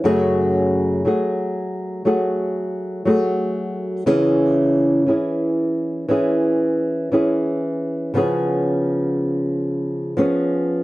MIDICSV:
0, 0, Header, 1, 2, 480
1, 0, Start_track
1, 0, Tempo, 1003344
1, 23, Time_signature, 4, 2, 24, 8
1, 2423, Tempo, 1020408
1, 5137, End_track
2, 0, Start_track
2, 0, Title_t, "Nylon-string guitar"
2, 0, Program_c, 0, 24
2, 19, Note_on_c, 0, 42, 69
2, 21, Note_on_c, 0, 49, 61
2, 23, Note_on_c, 0, 54, 69
2, 25, Note_on_c, 0, 57, 71
2, 26, Note_on_c, 0, 66, 78
2, 28, Note_on_c, 0, 68, 82
2, 496, Note_off_c, 0, 54, 0
2, 500, Note_off_c, 0, 57, 0
2, 501, Note_off_c, 0, 42, 0
2, 502, Note_off_c, 0, 49, 0
2, 502, Note_on_c, 0, 54, 47
2, 504, Note_off_c, 0, 66, 0
2, 506, Note_on_c, 0, 57, 47
2, 510, Note_on_c, 0, 66, 51
2, 511, Note_off_c, 0, 68, 0
2, 513, Note_on_c, 0, 68, 51
2, 975, Note_off_c, 0, 54, 0
2, 978, Note_off_c, 0, 57, 0
2, 981, Note_on_c, 0, 54, 52
2, 983, Note_off_c, 0, 66, 0
2, 984, Note_on_c, 0, 57, 62
2, 989, Note_on_c, 0, 66, 64
2, 990, Note_off_c, 0, 68, 0
2, 991, Note_on_c, 0, 68, 64
2, 1455, Note_off_c, 0, 54, 0
2, 1461, Note_off_c, 0, 57, 0
2, 1461, Note_on_c, 0, 54, 56
2, 1464, Note_off_c, 0, 66, 0
2, 1467, Note_on_c, 0, 57, 59
2, 1469, Note_on_c, 0, 66, 54
2, 1472, Note_off_c, 0, 68, 0
2, 1474, Note_on_c, 0, 68, 58
2, 1941, Note_off_c, 0, 54, 0
2, 1943, Note_on_c, 0, 49, 63
2, 1944, Note_off_c, 0, 57, 0
2, 1945, Note_off_c, 0, 66, 0
2, 1945, Note_on_c, 0, 52, 66
2, 1948, Note_off_c, 0, 68, 0
2, 1948, Note_on_c, 0, 61, 72
2, 1948, Note_on_c, 0, 64, 73
2, 1950, Note_on_c, 0, 68, 79
2, 2417, Note_off_c, 0, 52, 0
2, 2422, Note_on_c, 0, 52, 46
2, 2425, Note_off_c, 0, 49, 0
2, 2426, Note_off_c, 0, 61, 0
2, 2426, Note_off_c, 0, 64, 0
2, 2428, Note_on_c, 0, 61, 50
2, 2432, Note_on_c, 0, 64, 48
2, 2433, Note_off_c, 0, 68, 0
2, 2435, Note_on_c, 0, 68, 50
2, 2897, Note_off_c, 0, 52, 0
2, 2903, Note_on_c, 0, 52, 58
2, 2905, Note_off_c, 0, 64, 0
2, 2906, Note_off_c, 0, 61, 0
2, 2908, Note_on_c, 0, 61, 58
2, 2911, Note_on_c, 0, 64, 57
2, 2913, Note_off_c, 0, 68, 0
2, 2915, Note_on_c, 0, 68, 65
2, 3382, Note_off_c, 0, 52, 0
2, 3388, Note_on_c, 0, 52, 49
2, 3391, Note_off_c, 0, 61, 0
2, 3391, Note_off_c, 0, 64, 0
2, 3393, Note_on_c, 0, 61, 57
2, 3396, Note_on_c, 0, 64, 49
2, 3398, Note_off_c, 0, 68, 0
2, 3400, Note_on_c, 0, 68, 54
2, 3868, Note_on_c, 0, 49, 70
2, 3871, Note_off_c, 0, 52, 0
2, 3873, Note_on_c, 0, 53, 72
2, 3876, Note_off_c, 0, 61, 0
2, 3877, Note_off_c, 0, 64, 0
2, 3878, Note_on_c, 0, 59, 73
2, 3883, Note_on_c, 0, 61, 72
2, 3884, Note_off_c, 0, 68, 0
2, 3886, Note_on_c, 0, 68, 75
2, 4818, Note_off_c, 0, 53, 0
2, 4822, Note_off_c, 0, 59, 0
2, 4823, Note_on_c, 0, 53, 64
2, 4825, Note_off_c, 0, 49, 0
2, 4828, Note_on_c, 0, 59, 64
2, 4829, Note_off_c, 0, 68, 0
2, 4831, Note_off_c, 0, 61, 0
2, 4832, Note_on_c, 0, 61, 59
2, 4835, Note_on_c, 0, 68, 61
2, 5137, Note_off_c, 0, 53, 0
2, 5137, Note_off_c, 0, 59, 0
2, 5137, Note_off_c, 0, 61, 0
2, 5137, Note_off_c, 0, 68, 0
2, 5137, End_track
0, 0, End_of_file